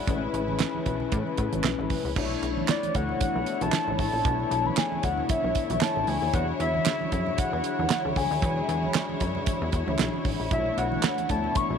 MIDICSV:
0, 0, Header, 1, 6, 480
1, 0, Start_track
1, 0, Tempo, 521739
1, 70, Time_signature, 4, 2, 24, 8
1, 10839, End_track
2, 0, Start_track
2, 0, Title_t, "Soft synth lead"
2, 0, Program_c, 0, 80
2, 2481, Note_on_c, 0, 74, 98
2, 2721, Note_on_c, 0, 78, 92
2, 2735, Note_off_c, 0, 74, 0
2, 2956, Note_off_c, 0, 78, 0
2, 2961, Note_on_c, 0, 78, 101
2, 3332, Note_on_c, 0, 81, 106
2, 3346, Note_off_c, 0, 78, 0
2, 3674, Note_off_c, 0, 81, 0
2, 3678, Note_on_c, 0, 81, 110
2, 4289, Note_on_c, 0, 83, 100
2, 4303, Note_off_c, 0, 81, 0
2, 4398, Note_on_c, 0, 80, 113
2, 4411, Note_off_c, 0, 83, 0
2, 4637, Note_on_c, 0, 78, 102
2, 4651, Note_off_c, 0, 80, 0
2, 4871, Note_off_c, 0, 78, 0
2, 4876, Note_on_c, 0, 76, 100
2, 5356, Note_on_c, 0, 81, 104
2, 5370, Note_off_c, 0, 76, 0
2, 5597, Note_on_c, 0, 80, 98
2, 5610, Note_off_c, 0, 81, 0
2, 5833, Note_off_c, 0, 80, 0
2, 5838, Note_on_c, 0, 78, 104
2, 5944, Note_off_c, 0, 78, 0
2, 6077, Note_on_c, 0, 76, 112
2, 6797, Note_on_c, 0, 78, 101
2, 6810, Note_off_c, 0, 76, 0
2, 7515, Note_on_c, 0, 80, 100
2, 7529, Note_off_c, 0, 78, 0
2, 8473, Note_off_c, 0, 80, 0
2, 9680, Note_on_c, 0, 76, 99
2, 9920, Note_on_c, 0, 78, 103
2, 9934, Note_off_c, 0, 76, 0
2, 10395, Note_off_c, 0, 78, 0
2, 10402, Note_on_c, 0, 81, 98
2, 10640, Note_on_c, 0, 85, 111
2, 10653, Note_off_c, 0, 81, 0
2, 10833, Note_off_c, 0, 85, 0
2, 10839, End_track
3, 0, Start_track
3, 0, Title_t, "Analog polysynth"
3, 0, Program_c, 1, 90
3, 0, Note_on_c, 1, 74, 55
3, 0, Note_on_c, 1, 78, 65
3, 61, Note_on_c, 1, 61, 78
3, 67, Note_on_c, 1, 64, 70
3, 72, Note_on_c, 1, 68, 71
3, 76, Note_on_c, 1, 71, 90
3, 192, Note_off_c, 1, 78, 0
3, 195, Note_off_c, 1, 74, 0
3, 1949, Note_off_c, 1, 61, 0
3, 1952, Note_off_c, 1, 64, 0
3, 1954, Note_off_c, 1, 68, 0
3, 1956, Note_off_c, 1, 71, 0
3, 1983, Note_on_c, 1, 62, 79
3, 1987, Note_on_c, 1, 64, 75
3, 1992, Note_on_c, 1, 69, 73
3, 1997, Note_on_c, 1, 73, 92
3, 5790, Note_off_c, 1, 62, 0
3, 5792, Note_off_c, 1, 64, 0
3, 5794, Note_off_c, 1, 69, 0
3, 5797, Note_off_c, 1, 73, 0
3, 5824, Note_on_c, 1, 62, 71
3, 5827, Note_on_c, 1, 66, 64
3, 5833, Note_on_c, 1, 68, 64
3, 5838, Note_on_c, 1, 73, 79
3, 9630, Note_off_c, 1, 62, 0
3, 9632, Note_off_c, 1, 66, 0
3, 9635, Note_off_c, 1, 68, 0
3, 9637, Note_off_c, 1, 73, 0
3, 9663, Note_on_c, 1, 62, 71
3, 9667, Note_on_c, 1, 64, 63
3, 9673, Note_on_c, 1, 69, 66
3, 9677, Note_on_c, 1, 73, 74
3, 10839, Note_off_c, 1, 62, 0
3, 10839, Note_off_c, 1, 64, 0
3, 10839, Note_off_c, 1, 69, 0
3, 10839, Note_off_c, 1, 73, 0
3, 10839, End_track
4, 0, Start_track
4, 0, Title_t, "String section"
4, 0, Program_c, 2, 48
4, 0, Note_on_c, 2, 56, 68
4, 0, Note_on_c, 2, 64, 83
4, 68, Note_on_c, 2, 49, 76
4, 69, Note_on_c, 2, 52, 66
4, 69, Note_on_c, 2, 57, 68
4, 1954, Note_off_c, 2, 64, 0
4, 1955, Note_off_c, 2, 56, 0
4, 1970, Note_off_c, 2, 49, 0
4, 1970, Note_off_c, 2, 52, 0
4, 1970, Note_off_c, 2, 57, 0
4, 1988, Note_on_c, 2, 50, 81
4, 1988, Note_on_c, 2, 57, 73
4, 1988, Note_on_c, 2, 59, 72
4, 1990, Note_on_c, 2, 73, 73
4, 1991, Note_on_c, 2, 64, 85
4, 5792, Note_off_c, 2, 57, 0
4, 5792, Note_off_c, 2, 59, 0
4, 5830, Note_on_c, 2, 56, 76
4, 5831, Note_on_c, 2, 54, 73
4, 9633, Note_off_c, 2, 56, 0
4, 9634, Note_off_c, 2, 54, 0
4, 9670, Note_on_c, 2, 59, 70
4, 9672, Note_on_c, 2, 57, 74
4, 10839, Note_off_c, 2, 50, 0
4, 10839, Note_off_c, 2, 57, 0
4, 10839, Note_off_c, 2, 59, 0
4, 10839, Note_off_c, 2, 64, 0
4, 10839, Note_off_c, 2, 73, 0
4, 10839, End_track
5, 0, Start_track
5, 0, Title_t, "Analog synth bass"
5, 0, Program_c, 3, 38
5, 70, Note_on_c, 3, 33, 117
5, 248, Note_off_c, 3, 33, 0
5, 309, Note_on_c, 3, 33, 96
5, 587, Note_off_c, 3, 33, 0
5, 793, Note_on_c, 3, 35, 85
5, 970, Note_off_c, 3, 35, 0
5, 1033, Note_on_c, 3, 45, 121
5, 1132, Note_off_c, 3, 45, 0
5, 1271, Note_on_c, 3, 45, 94
5, 1370, Note_off_c, 3, 45, 0
5, 1404, Note_on_c, 3, 33, 84
5, 1482, Note_off_c, 3, 33, 0
5, 1508, Note_on_c, 3, 35, 94
5, 1609, Note_off_c, 3, 35, 0
5, 1643, Note_on_c, 3, 33, 88
5, 1722, Note_off_c, 3, 33, 0
5, 1884, Note_on_c, 3, 37, 87
5, 1962, Note_off_c, 3, 37, 0
5, 1990, Note_on_c, 3, 35, 108
5, 2168, Note_off_c, 3, 35, 0
5, 2229, Note_on_c, 3, 35, 107
5, 2408, Note_off_c, 3, 35, 0
5, 2713, Note_on_c, 3, 38, 83
5, 2890, Note_off_c, 3, 38, 0
5, 3085, Note_on_c, 3, 35, 94
5, 3163, Note_off_c, 3, 35, 0
5, 3324, Note_on_c, 3, 35, 94
5, 3403, Note_off_c, 3, 35, 0
5, 3565, Note_on_c, 3, 33, 95
5, 3643, Note_off_c, 3, 33, 0
5, 3669, Note_on_c, 3, 33, 89
5, 3769, Note_off_c, 3, 33, 0
5, 3804, Note_on_c, 3, 34, 78
5, 3882, Note_off_c, 3, 34, 0
5, 3910, Note_on_c, 3, 35, 120
5, 4088, Note_off_c, 3, 35, 0
5, 4148, Note_on_c, 3, 35, 99
5, 4327, Note_off_c, 3, 35, 0
5, 4632, Note_on_c, 3, 38, 89
5, 4809, Note_off_c, 3, 38, 0
5, 5005, Note_on_c, 3, 35, 88
5, 5083, Note_off_c, 3, 35, 0
5, 5244, Note_on_c, 3, 35, 94
5, 5322, Note_off_c, 3, 35, 0
5, 5485, Note_on_c, 3, 33, 93
5, 5563, Note_off_c, 3, 33, 0
5, 5591, Note_on_c, 3, 38, 99
5, 5690, Note_off_c, 3, 38, 0
5, 5724, Note_on_c, 3, 39, 83
5, 5803, Note_off_c, 3, 39, 0
5, 5829, Note_on_c, 3, 40, 103
5, 6007, Note_off_c, 3, 40, 0
5, 6069, Note_on_c, 3, 40, 100
5, 6247, Note_off_c, 3, 40, 0
5, 6553, Note_on_c, 3, 42, 83
5, 6730, Note_off_c, 3, 42, 0
5, 6925, Note_on_c, 3, 40, 92
5, 7003, Note_off_c, 3, 40, 0
5, 7166, Note_on_c, 3, 40, 96
5, 7244, Note_off_c, 3, 40, 0
5, 7405, Note_on_c, 3, 38, 95
5, 7483, Note_off_c, 3, 38, 0
5, 7511, Note_on_c, 3, 38, 98
5, 7610, Note_off_c, 3, 38, 0
5, 7644, Note_on_c, 3, 39, 92
5, 7723, Note_off_c, 3, 39, 0
5, 7751, Note_on_c, 3, 40, 110
5, 7929, Note_off_c, 3, 40, 0
5, 7991, Note_on_c, 3, 40, 111
5, 8168, Note_off_c, 3, 40, 0
5, 8473, Note_on_c, 3, 42, 84
5, 8650, Note_off_c, 3, 42, 0
5, 8845, Note_on_c, 3, 40, 97
5, 8923, Note_off_c, 3, 40, 0
5, 8951, Note_on_c, 3, 40, 96
5, 9051, Note_off_c, 3, 40, 0
5, 9085, Note_on_c, 3, 38, 99
5, 9163, Note_off_c, 3, 38, 0
5, 9193, Note_on_c, 3, 35, 104
5, 9292, Note_off_c, 3, 35, 0
5, 9429, Note_on_c, 3, 33, 88
5, 9529, Note_off_c, 3, 33, 0
5, 9566, Note_on_c, 3, 34, 82
5, 9644, Note_off_c, 3, 34, 0
5, 9672, Note_on_c, 3, 35, 108
5, 9849, Note_off_c, 3, 35, 0
5, 9914, Note_on_c, 3, 35, 113
5, 10090, Note_off_c, 3, 35, 0
5, 10394, Note_on_c, 3, 38, 85
5, 10570, Note_off_c, 3, 38, 0
5, 10767, Note_on_c, 3, 35, 96
5, 10839, Note_off_c, 3, 35, 0
5, 10839, End_track
6, 0, Start_track
6, 0, Title_t, "Drums"
6, 69, Note_on_c, 9, 36, 110
6, 69, Note_on_c, 9, 42, 83
6, 70, Note_on_c, 9, 64, 69
6, 161, Note_off_c, 9, 36, 0
6, 161, Note_off_c, 9, 42, 0
6, 162, Note_off_c, 9, 64, 0
6, 312, Note_on_c, 9, 42, 67
6, 404, Note_off_c, 9, 42, 0
6, 443, Note_on_c, 9, 63, 80
6, 535, Note_off_c, 9, 63, 0
6, 545, Note_on_c, 9, 42, 90
6, 546, Note_on_c, 9, 39, 91
6, 554, Note_on_c, 9, 38, 111
6, 637, Note_off_c, 9, 42, 0
6, 638, Note_off_c, 9, 39, 0
6, 646, Note_off_c, 9, 38, 0
6, 686, Note_on_c, 9, 62, 32
6, 686, Note_on_c, 9, 63, 71
6, 778, Note_off_c, 9, 62, 0
6, 778, Note_off_c, 9, 63, 0
6, 789, Note_on_c, 9, 42, 71
6, 793, Note_on_c, 9, 36, 82
6, 881, Note_off_c, 9, 42, 0
6, 885, Note_off_c, 9, 36, 0
6, 921, Note_on_c, 9, 64, 76
6, 1013, Note_off_c, 9, 64, 0
6, 1028, Note_on_c, 9, 42, 92
6, 1029, Note_on_c, 9, 62, 31
6, 1029, Note_on_c, 9, 63, 52
6, 1033, Note_on_c, 9, 36, 102
6, 1120, Note_off_c, 9, 42, 0
6, 1121, Note_off_c, 9, 62, 0
6, 1121, Note_off_c, 9, 63, 0
6, 1125, Note_off_c, 9, 36, 0
6, 1169, Note_on_c, 9, 62, 30
6, 1261, Note_off_c, 9, 62, 0
6, 1265, Note_on_c, 9, 42, 78
6, 1271, Note_on_c, 9, 36, 82
6, 1357, Note_off_c, 9, 42, 0
6, 1363, Note_off_c, 9, 36, 0
6, 1404, Note_on_c, 9, 42, 51
6, 1406, Note_on_c, 9, 63, 84
6, 1496, Note_off_c, 9, 42, 0
6, 1498, Note_off_c, 9, 63, 0
6, 1505, Note_on_c, 9, 39, 84
6, 1512, Note_on_c, 9, 42, 88
6, 1513, Note_on_c, 9, 38, 102
6, 1597, Note_off_c, 9, 39, 0
6, 1604, Note_off_c, 9, 42, 0
6, 1605, Note_off_c, 9, 38, 0
6, 1646, Note_on_c, 9, 63, 77
6, 1738, Note_off_c, 9, 63, 0
6, 1747, Note_on_c, 9, 46, 71
6, 1750, Note_on_c, 9, 36, 84
6, 1750, Note_on_c, 9, 64, 72
6, 1839, Note_off_c, 9, 46, 0
6, 1842, Note_off_c, 9, 36, 0
6, 1842, Note_off_c, 9, 64, 0
6, 1990, Note_on_c, 9, 36, 116
6, 1990, Note_on_c, 9, 49, 95
6, 1991, Note_on_c, 9, 62, 34
6, 1991, Note_on_c, 9, 64, 71
6, 2082, Note_off_c, 9, 36, 0
6, 2082, Note_off_c, 9, 49, 0
6, 2083, Note_off_c, 9, 62, 0
6, 2083, Note_off_c, 9, 64, 0
6, 2125, Note_on_c, 9, 62, 33
6, 2217, Note_off_c, 9, 62, 0
6, 2232, Note_on_c, 9, 42, 72
6, 2324, Note_off_c, 9, 42, 0
6, 2365, Note_on_c, 9, 63, 84
6, 2457, Note_off_c, 9, 63, 0
6, 2465, Note_on_c, 9, 42, 91
6, 2466, Note_on_c, 9, 39, 96
6, 2474, Note_on_c, 9, 38, 116
6, 2557, Note_off_c, 9, 42, 0
6, 2558, Note_off_c, 9, 39, 0
6, 2566, Note_off_c, 9, 38, 0
6, 2606, Note_on_c, 9, 42, 52
6, 2606, Note_on_c, 9, 63, 71
6, 2698, Note_off_c, 9, 42, 0
6, 2698, Note_off_c, 9, 63, 0
6, 2710, Note_on_c, 9, 42, 73
6, 2713, Note_on_c, 9, 36, 89
6, 2802, Note_off_c, 9, 42, 0
6, 2805, Note_off_c, 9, 36, 0
6, 2841, Note_on_c, 9, 64, 77
6, 2933, Note_off_c, 9, 64, 0
6, 2948, Note_on_c, 9, 62, 35
6, 2948, Note_on_c, 9, 63, 53
6, 2950, Note_on_c, 9, 42, 90
6, 2953, Note_on_c, 9, 36, 106
6, 3040, Note_off_c, 9, 62, 0
6, 3040, Note_off_c, 9, 63, 0
6, 3042, Note_off_c, 9, 42, 0
6, 3045, Note_off_c, 9, 36, 0
6, 3089, Note_on_c, 9, 62, 29
6, 3181, Note_off_c, 9, 62, 0
6, 3187, Note_on_c, 9, 42, 76
6, 3279, Note_off_c, 9, 42, 0
6, 3323, Note_on_c, 9, 42, 52
6, 3327, Note_on_c, 9, 63, 81
6, 3415, Note_off_c, 9, 42, 0
6, 3419, Note_off_c, 9, 63, 0
6, 3424, Note_on_c, 9, 39, 85
6, 3431, Note_on_c, 9, 42, 94
6, 3432, Note_on_c, 9, 38, 105
6, 3432, Note_on_c, 9, 62, 34
6, 3516, Note_off_c, 9, 39, 0
6, 3523, Note_off_c, 9, 42, 0
6, 3524, Note_off_c, 9, 38, 0
6, 3524, Note_off_c, 9, 62, 0
6, 3567, Note_on_c, 9, 62, 36
6, 3567, Note_on_c, 9, 63, 77
6, 3659, Note_off_c, 9, 62, 0
6, 3659, Note_off_c, 9, 63, 0
6, 3666, Note_on_c, 9, 46, 73
6, 3669, Note_on_c, 9, 36, 89
6, 3758, Note_off_c, 9, 46, 0
6, 3761, Note_off_c, 9, 36, 0
6, 3909, Note_on_c, 9, 64, 68
6, 3910, Note_on_c, 9, 36, 119
6, 3910, Note_on_c, 9, 42, 79
6, 4001, Note_off_c, 9, 64, 0
6, 4002, Note_off_c, 9, 36, 0
6, 4002, Note_off_c, 9, 42, 0
6, 4046, Note_on_c, 9, 62, 33
6, 4138, Note_off_c, 9, 62, 0
6, 4153, Note_on_c, 9, 42, 74
6, 4245, Note_off_c, 9, 42, 0
6, 4284, Note_on_c, 9, 63, 88
6, 4376, Note_off_c, 9, 63, 0
6, 4385, Note_on_c, 9, 42, 94
6, 4387, Note_on_c, 9, 39, 92
6, 4390, Note_on_c, 9, 62, 32
6, 4395, Note_on_c, 9, 38, 124
6, 4477, Note_off_c, 9, 42, 0
6, 4479, Note_off_c, 9, 39, 0
6, 4482, Note_off_c, 9, 62, 0
6, 4487, Note_off_c, 9, 38, 0
6, 4526, Note_on_c, 9, 62, 34
6, 4526, Note_on_c, 9, 63, 72
6, 4618, Note_off_c, 9, 62, 0
6, 4618, Note_off_c, 9, 63, 0
6, 4629, Note_on_c, 9, 42, 78
6, 4632, Note_on_c, 9, 36, 89
6, 4721, Note_off_c, 9, 42, 0
6, 4724, Note_off_c, 9, 36, 0
6, 4761, Note_on_c, 9, 64, 78
6, 4853, Note_off_c, 9, 64, 0
6, 4868, Note_on_c, 9, 42, 95
6, 4869, Note_on_c, 9, 62, 35
6, 4869, Note_on_c, 9, 63, 51
6, 4872, Note_on_c, 9, 36, 108
6, 4960, Note_off_c, 9, 42, 0
6, 4961, Note_off_c, 9, 62, 0
6, 4961, Note_off_c, 9, 63, 0
6, 4964, Note_off_c, 9, 36, 0
6, 5008, Note_on_c, 9, 62, 30
6, 5100, Note_off_c, 9, 62, 0
6, 5105, Note_on_c, 9, 42, 82
6, 5111, Note_on_c, 9, 36, 86
6, 5197, Note_off_c, 9, 42, 0
6, 5203, Note_off_c, 9, 36, 0
6, 5242, Note_on_c, 9, 42, 53
6, 5246, Note_on_c, 9, 63, 84
6, 5334, Note_off_c, 9, 42, 0
6, 5338, Note_off_c, 9, 63, 0
6, 5343, Note_on_c, 9, 39, 89
6, 5351, Note_on_c, 9, 38, 113
6, 5351, Note_on_c, 9, 42, 87
6, 5351, Note_on_c, 9, 62, 34
6, 5435, Note_off_c, 9, 39, 0
6, 5443, Note_off_c, 9, 38, 0
6, 5443, Note_off_c, 9, 42, 0
6, 5443, Note_off_c, 9, 62, 0
6, 5485, Note_on_c, 9, 62, 34
6, 5485, Note_on_c, 9, 63, 73
6, 5577, Note_off_c, 9, 62, 0
6, 5577, Note_off_c, 9, 63, 0
6, 5585, Note_on_c, 9, 46, 74
6, 5677, Note_off_c, 9, 46, 0
6, 5828, Note_on_c, 9, 42, 84
6, 5829, Note_on_c, 9, 36, 113
6, 5830, Note_on_c, 9, 62, 33
6, 5830, Note_on_c, 9, 64, 69
6, 5920, Note_off_c, 9, 42, 0
6, 5921, Note_off_c, 9, 36, 0
6, 5922, Note_off_c, 9, 62, 0
6, 5922, Note_off_c, 9, 64, 0
6, 6072, Note_on_c, 9, 42, 73
6, 6164, Note_off_c, 9, 42, 0
6, 6205, Note_on_c, 9, 63, 82
6, 6297, Note_off_c, 9, 63, 0
6, 6306, Note_on_c, 9, 42, 92
6, 6307, Note_on_c, 9, 39, 98
6, 6311, Note_on_c, 9, 62, 31
6, 6315, Note_on_c, 9, 38, 115
6, 6398, Note_off_c, 9, 42, 0
6, 6399, Note_off_c, 9, 39, 0
6, 6403, Note_off_c, 9, 62, 0
6, 6407, Note_off_c, 9, 38, 0
6, 6448, Note_on_c, 9, 62, 32
6, 6448, Note_on_c, 9, 63, 74
6, 6540, Note_off_c, 9, 62, 0
6, 6540, Note_off_c, 9, 63, 0
6, 6550, Note_on_c, 9, 42, 77
6, 6553, Note_on_c, 9, 36, 83
6, 6642, Note_off_c, 9, 42, 0
6, 6645, Note_off_c, 9, 36, 0
6, 6683, Note_on_c, 9, 64, 77
6, 6775, Note_off_c, 9, 64, 0
6, 6789, Note_on_c, 9, 42, 97
6, 6791, Note_on_c, 9, 63, 52
6, 6793, Note_on_c, 9, 36, 111
6, 6881, Note_off_c, 9, 42, 0
6, 6883, Note_off_c, 9, 63, 0
6, 6885, Note_off_c, 9, 36, 0
6, 6930, Note_on_c, 9, 62, 30
6, 7022, Note_off_c, 9, 62, 0
6, 7027, Note_on_c, 9, 42, 79
6, 7119, Note_off_c, 9, 42, 0
6, 7167, Note_on_c, 9, 63, 87
6, 7259, Note_off_c, 9, 63, 0
6, 7264, Note_on_c, 9, 39, 88
6, 7272, Note_on_c, 9, 38, 105
6, 7272, Note_on_c, 9, 42, 93
6, 7356, Note_off_c, 9, 39, 0
6, 7364, Note_off_c, 9, 38, 0
6, 7364, Note_off_c, 9, 42, 0
6, 7407, Note_on_c, 9, 63, 78
6, 7499, Note_off_c, 9, 63, 0
6, 7505, Note_on_c, 9, 46, 75
6, 7509, Note_on_c, 9, 36, 94
6, 7597, Note_off_c, 9, 46, 0
6, 7601, Note_off_c, 9, 36, 0
6, 7750, Note_on_c, 9, 36, 116
6, 7750, Note_on_c, 9, 42, 84
6, 7750, Note_on_c, 9, 62, 34
6, 7750, Note_on_c, 9, 64, 70
6, 7842, Note_off_c, 9, 36, 0
6, 7842, Note_off_c, 9, 42, 0
6, 7842, Note_off_c, 9, 62, 0
6, 7842, Note_off_c, 9, 64, 0
6, 7887, Note_on_c, 9, 62, 34
6, 7979, Note_off_c, 9, 62, 0
6, 7994, Note_on_c, 9, 42, 75
6, 8086, Note_off_c, 9, 42, 0
6, 8124, Note_on_c, 9, 63, 87
6, 8216, Note_off_c, 9, 63, 0
6, 8225, Note_on_c, 9, 42, 97
6, 8227, Note_on_c, 9, 39, 101
6, 8235, Note_on_c, 9, 38, 126
6, 8317, Note_off_c, 9, 42, 0
6, 8319, Note_off_c, 9, 39, 0
6, 8327, Note_off_c, 9, 38, 0
6, 8365, Note_on_c, 9, 62, 33
6, 8365, Note_on_c, 9, 63, 70
6, 8457, Note_off_c, 9, 62, 0
6, 8457, Note_off_c, 9, 63, 0
6, 8467, Note_on_c, 9, 42, 75
6, 8472, Note_on_c, 9, 36, 88
6, 8559, Note_off_c, 9, 42, 0
6, 8564, Note_off_c, 9, 36, 0
6, 8601, Note_on_c, 9, 64, 81
6, 8693, Note_off_c, 9, 64, 0
6, 8707, Note_on_c, 9, 42, 94
6, 8708, Note_on_c, 9, 63, 51
6, 8713, Note_on_c, 9, 36, 109
6, 8799, Note_off_c, 9, 42, 0
6, 8800, Note_off_c, 9, 63, 0
6, 8805, Note_off_c, 9, 36, 0
6, 8849, Note_on_c, 9, 62, 31
6, 8941, Note_off_c, 9, 62, 0
6, 8946, Note_on_c, 9, 42, 81
6, 8951, Note_on_c, 9, 36, 83
6, 9038, Note_off_c, 9, 42, 0
6, 9043, Note_off_c, 9, 36, 0
6, 9088, Note_on_c, 9, 63, 89
6, 9180, Note_off_c, 9, 63, 0
6, 9186, Note_on_c, 9, 39, 91
6, 9193, Note_on_c, 9, 42, 94
6, 9194, Note_on_c, 9, 38, 109
6, 9278, Note_off_c, 9, 39, 0
6, 9285, Note_off_c, 9, 42, 0
6, 9286, Note_off_c, 9, 38, 0
6, 9325, Note_on_c, 9, 62, 35
6, 9325, Note_on_c, 9, 63, 81
6, 9417, Note_off_c, 9, 62, 0
6, 9417, Note_off_c, 9, 63, 0
6, 9428, Note_on_c, 9, 46, 74
6, 9430, Note_on_c, 9, 36, 92
6, 9520, Note_off_c, 9, 46, 0
6, 9522, Note_off_c, 9, 36, 0
6, 9669, Note_on_c, 9, 62, 33
6, 9669, Note_on_c, 9, 64, 70
6, 9670, Note_on_c, 9, 36, 116
6, 9670, Note_on_c, 9, 42, 84
6, 9761, Note_off_c, 9, 62, 0
6, 9761, Note_off_c, 9, 64, 0
6, 9762, Note_off_c, 9, 36, 0
6, 9762, Note_off_c, 9, 42, 0
6, 9807, Note_on_c, 9, 62, 34
6, 9899, Note_off_c, 9, 62, 0
6, 9915, Note_on_c, 9, 42, 73
6, 10007, Note_off_c, 9, 42, 0
6, 10044, Note_on_c, 9, 63, 88
6, 10136, Note_off_c, 9, 63, 0
6, 10145, Note_on_c, 9, 42, 89
6, 10147, Note_on_c, 9, 39, 101
6, 10151, Note_on_c, 9, 62, 33
6, 10155, Note_on_c, 9, 38, 118
6, 10237, Note_off_c, 9, 42, 0
6, 10239, Note_off_c, 9, 39, 0
6, 10243, Note_off_c, 9, 62, 0
6, 10247, Note_off_c, 9, 38, 0
6, 10287, Note_on_c, 9, 42, 51
6, 10288, Note_on_c, 9, 63, 75
6, 10379, Note_off_c, 9, 42, 0
6, 10380, Note_off_c, 9, 63, 0
6, 10389, Note_on_c, 9, 42, 75
6, 10393, Note_on_c, 9, 36, 89
6, 10481, Note_off_c, 9, 42, 0
6, 10485, Note_off_c, 9, 36, 0
6, 10523, Note_on_c, 9, 64, 79
6, 10615, Note_off_c, 9, 64, 0
6, 10629, Note_on_c, 9, 42, 98
6, 10630, Note_on_c, 9, 63, 52
6, 10633, Note_on_c, 9, 36, 110
6, 10721, Note_off_c, 9, 42, 0
6, 10722, Note_off_c, 9, 63, 0
6, 10725, Note_off_c, 9, 36, 0
6, 10770, Note_on_c, 9, 62, 30
6, 10839, Note_off_c, 9, 62, 0
6, 10839, End_track
0, 0, End_of_file